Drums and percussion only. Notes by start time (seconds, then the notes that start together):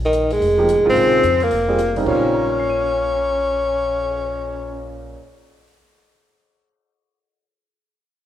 0.13 closed hi-hat
0.30 open hi-hat
0.42 open hi-hat
0.69 closed hi-hat
0.96 open hi-hat
1.23 closed hi-hat
1.40 open hi-hat
1.51 open hi-hat
1.79 closed hi-hat
1.96 open hi-hat
2.06 kick, crash
2.24 cymbal swell